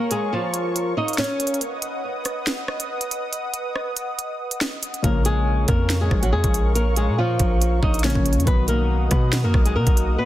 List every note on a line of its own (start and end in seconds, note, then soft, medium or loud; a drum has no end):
0.00 0.10 A#3 medium
0.00 0.10 A#4 medium
0.00 1.58 A#4 medium
0.00 1.58 C#5 medium
0.00 1.58 F5 medium
0.00 1.58 C#6 medium
0.11 0.32 G#3 medium
0.11 0.32 G#4 medium
0.11 closed hi-hat medium
0.33 0.94 F3 medium
0.33 0.93 F4 medium
0.54 closed hi-hat medium
0.76 closed hi-hat medium
0.97 1.17 D#4 medium
0.97 1.18 D#5 medium
1.08 closed hi-hat medium
1.13 closed hi-hat medium
1.18 1.59 C#4 medium
1.18 1.59 C#5 medium
1.18 snare loud
1.18 closed hi-hat medium
1.24 closed hi-hat medium
1.40 closed hi-hat medium
1.47 closed hi-hat medium
1.54 closed hi-hat soft
1.61 5.01 B4 medium
1.61 5.01 D#5 medium
1.61 5.01 F#5 medium
1.61 5.01 D#6 medium
1.61 closed hi-hat medium
1.82 closed hi-hat medium
2.25 cross-stick medium
2.25 closed hi-hat medium
2.47 snare loud
2.47 closed hi-hat medium
2.68 cross-stick loud
2.80 closed hi-hat medium
3.01 closed hi-hat medium
3.11 closed hi-hat medium
3.33 closed hi-hat medium
3.54 closed hi-hat medium
3.76 cross-stick medium
3.97 closed hi-hat medium
4.19 closed hi-hat medium
4.51 closed hi-hat medium
4.61 snare loud
4.61 closed hi-hat medium
4.83 closed hi-hat medium
4.94 closed hi-hat soft
5.02 5.66 A#1 loud
5.02 7.99 C#3 medium
5.02 8.00 F3 medium
5.02 8.00 A#3 medium
5.02 5.25 A#3 medium
5.02 8.01 C#4 medium
5.02 5.24 A#4 medium
5.02 8.44 A#4 medium
5.02 8.44 C#5 medium
5.02 8.44 F5 medium
5.02 8.44 C#6 medium
5.02 kick loud
5.02 closed hi-hat medium
5.25 5.66 G#3 medium
5.25 5.66 G#4 medium
5.25 closed hi-hat medium
5.68 6.10 F2 loud
5.68 6.00 A#3 medium
5.68 5.99 A#4 medium
5.68 kick medium
5.68 cross-stick medium
5.68 closed hi-hat medium
5.90 snare loud
5.90 closed hi-hat medium
6.01 6.22 G#3 medium
6.01 6.21 G#4 medium
6.11 6.34 A#1 loud
6.11 kick loud
6.11 cross-stick medium
6.23 6.33 F#3 medium
6.23 6.32 F#4 medium
6.23 closed hi-hat medium
6.32 6.43 F2 loud
6.32 6.73 G#3 medium
6.32 6.73 G#4 loud
6.44 7.10 A#1 loud
6.44 kick loud
6.44 closed hi-hat medium
6.54 closed hi-hat medium
6.75 6.96 A#3 medium
6.75 6.96 A#4 medium
6.75 closed hi-hat medium
6.96 7.18 G#3 medium
6.96 7.17 G#4 medium
6.96 closed hi-hat medium
7.08 7.38 A#2 medium
7.18 7.79 F3 medium
7.18 7.79 F4 medium
7.39 7.81 A#1 loud
7.39 kick medium
7.39 closed hi-hat medium
7.62 closed hi-hat medium
7.83 8.14 A#1 loud
7.83 8.03 D#4 medium
7.83 8.03 D#5 medium
7.83 kick medium
7.94 closed hi-hat medium
7.99 closed hi-hat medium
8.03 8.47 C#3 medium
8.03 8.47 F3 medium
8.03 8.47 A#3 soft
8.03 8.44 C#4 medium
8.03 8.47 C#4 medium
8.03 8.45 C#5 medium
8.03 snare loud
8.03 closed hi-hat medium
8.10 closed hi-hat medium
8.15 8.38 A#1 loud
8.15 kick loud
8.26 closed hi-hat medium
8.33 closed hi-hat medium
8.37 8.46 F2 loud
8.37 closed hi-hat soft
8.45 9.09 B1 loud
8.45 10.25 B2 medium
8.45 10.25 D#3 medium
8.45 10.25 F#3 medium
8.45 8.68 B3 medium
8.45 10.25 D#4 medium
8.45 10.25 F#4 medium
8.45 8.67 B4 medium
8.45 10.25 D#5 medium
8.45 10.25 F#5 medium
8.45 10.25 D#6 medium
8.45 kick loud
8.45 closed hi-hat medium
8.68 9.09 A#3 medium
8.68 9.09 A#4 medium
8.68 closed hi-hat medium
9.11 9.45 B2 loud
9.11 9.42 B3 medium
9.11 9.42 B4 medium
9.11 kick medium
9.11 cross-stick medium
9.11 closed hi-hat medium
9.33 snare loud
9.33 closed hi-hat medium
9.44 9.54 F#2 loud
9.44 9.65 A#3 medium
9.44 9.64 A#4 medium
9.54 9.77 B1 loud
9.54 kick medium
9.54 cross-stick loud
9.65 9.75 G#3 medium
9.65 9.75 G#4 medium
9.65 closed hi-hat medium
9.75 9.86 B2 loud
9.75 10.16 A#3 medium
9.75 10.16 A#4 medium
9.87 10.17 B1 loud
9.87 kick loud
9.87 closed hi-hat medium
9.97 closed hi-hat medium
10.18 10.25 B3 medium
10.18 10.25 B4 medium